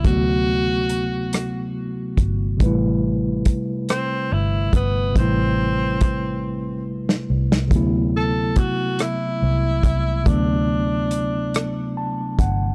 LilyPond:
<<
  \new Staff \with { instrumentName = "Tenor saxophone" } { \time 6/8 \key d \mixolydian \tempo 4. = 47 fis'2 r4 | r4. c'8 e'8 b8 | c'2 r4 | r8 a'8 fis'8 e'4. |
d'2 r4 | }
  \new Staff \with { instrumentName = "Tine electric piano" } { \time 6/8 \key d \mixolydian r2. | r2. | r2. | r2. |
r2 a''8 fis''8 | }
  \new Staff \with { instrumentName = "Tine electric piano" } { \time 6/8 \key d \mixolydian <c fis a b fis'>2. | <c g a e' b'>2. | <c g a e' b'>2. | <c fis a b e'>2. |
<c fis a b d'>2. | }
  \new Staff \with { instrumentName = "Fingered electric bass" } { \clef bass \time 6/8 \key d \mixolydian d,2~ d,8 g,,8 | a,,4 r4 g,,8 g,,8 | a,,2~ a,,8 c,8 | d,4 r4 c,8 c,8 |
d,2~ d,8 g,,8 | }
  \new DrumStaff \with { instrumentName = "Drums" } \drummode { \time 6/8 <hh bd>4 hh8 <hh ss>4 <hh bd>8 | <hh bd>4 <hh bd>8 <hh ss>4 <hh bd>8 | <hh bd>4 <hh bd>8 r8. sn8 sn16 | <hh bd>4 <hh bd>8 <hh ss>4 <hh bd>8 |
<hh bd>4 hh8 <hh ss>4 <hh bd>8 | }
>>